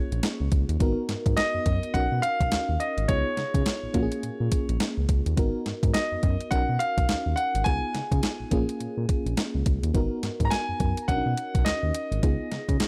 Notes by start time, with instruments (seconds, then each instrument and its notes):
Already playing: fm electric piano A#3 C#4 F4 G#4, grand piano C#5
0.12 analog synth bass A#1, closed hi-hat
0.23 snare, closed hi-hat
0.40 analog synth bass C#2
0.52 analog synth bass C#2, kick, closed hi-hat
0.69 analog synth bass D#2, closed hi-hat
0.80 analog synth bass G#1, fm electric piano B3 D#4 F#4 A#4, kick, closed hi-hat
1.09 analog synth bass G#2, snare, closed hi-hat
1.26 analog synth bass G#2, kick, closed hi-hat
1.37 grand piano D#5, snare, closed hi-hat
1.55 analog synth bass F#2
1.66 analog synth bass F#2, kick, closed hi-hat
1.83 closed hi-hat
1.94 analog synth bass B1, fm electric piano C#4 D#4 F#4 A#4, grand piano F#5, kick, closed hi-hat
2.12 analog synth bass B2
2.22 grand piano F5, closed hi-hat
2.40 analog synth bass B1, kick, closed hi-hat
2.52 analog synth bass D#2, snare, closed hi-hat
2.69 analog synth bass D#2
2.80 grand piano D#5, closed hi-hat
2.97 analog synth bass G#1, closed hi-hat
3.08 analog synth bass C#2, fm electric piano B3 D#4 F4 G#4, grand piano C#5, kick, closed hi-hat
3.37 analog synth bass C#3, snare, closed hi-hat
3.54 analog synth bass C#3, kick, closed hi-hat
3.66 snare, closed hi-hat
3.83 analog synth bass A#1
3.94 analog synth bass A#1, fm electric piano A#3 C#4 F4 F#4, kick, closed hi-hat
4.03 fm electric piano G#4
4.12 closed hi-hat
4.23 analog synth bass A#2, closed hi-hat
4.40 analog synth bass A#2
4.52 kick, closed hi-hat
4.69 analog synth bass A#1, closed hi-hat
4.80 snare, closed hi-hat
4.98 analog synth bass C#2
5.09 analog synth bass C#2, kick, closed hi-hat
5.26 analog synth bass D#2, closed hi-hat
5.37 analog synth bass G#1, fm electric piano B3 D#4 F#4 A#4, kick, closed hi-hat
5.66 analog synth bass G#2, snare, closed hi-hat
5.83 analog synth bass G#2, kick, closed hi-hat
5.94 grand piano D#5, snare, closed hi-hat
6.12 analog synth bass F#2
6.23 analog synth bass F#2, kick, closed hi-hat
6.41 closed hi-hat
6.51 analog synth bass B1, fm electric piano C#4 D#4 F#4 A#4, grand piano F#5, kick, closed hi-hat
6.69 analog synth bass B2
6.79 grand piano F5, closed hi-hat
6.98 analog synth bass B1, kick, closed hi-hat
7.09 analog synth bass D#2, snare, closed hi-hat
7.26 analog synth bass D#2
7.36 grand piano F#5, closed hi-hat
7.55 analog synth bass G#1, closed hi-hat
7.64 analog synth bass C#2, fm electric piano B3 D#4 F4 G#4, grand piano G#5, kick, closed hi-hat
7.95 analog synth bass C#3, snare, closed hi-hat
8.12 analog synth bass C#3, kick, closed hi-hat
8.23 snare, closed hi-hat
8.40 analog synth bass A#1
8.51 analog synth bass A#1, fm electric piano A#3 C#4 F4 G#4, kick, closed hi-hat
8.69 closed hi-hat
8.80 analog synth bass A#2, closed hi-hat
8.97 analog synth bass A#2
9.09 kick, closed hi-hat
9.26 analog synth bass A#1, closed hi-hat
9.37 snare, closed hi-hat
9.55 analog synth bass C#2
9.66 analog synth bass C#2, kick, closed hi-hat
9.83 analog synth bass D#2, closed hi-hat
9.94 analog synth bass G#1, fm electric piano B3 D#4 F#4 A#4, kick, closed hi-hat
10.23 analog synth bass G#2, snare, closed hi-hat
10.40 analog synth bass G#2, kick, closed hi-hat
10.45 grand piano A#5
10.50 grand piano G#5, snare, closed hi-hat
10.69 analog synth bass F#2
10.80 analog synth bass F#2, kick, closed hi-hat
10.97 closed hi-hat
11.08 analog synth bass B1, fm electric piano C#4 D4 F#4 A#4, grand piano F#5, kick, closed hi-hat
11.16 fm electric piano D#4
11.26 analog synth bass B2
11.37 closed hi-hat
11.55 analog synth bass B1, kick, closed hi-hat
11.65 analog synth bass D#2, grand piano D#5, snare, closed hi-hat
11.83 analog synth bass D#2
11.95 closed hi-hat
12.12 analog synth bass G#1, closed hi-hat
12.23 analog synth bass C#2, fm electric piano B3 D#4 F4 G#4, kick, closed hi-hat
12.52 analog synth bass C#3, snare, closed hi-hat
12.69 analog synth bass C#3, kick, closed hi-hat
12.80 snare, closed hi-hat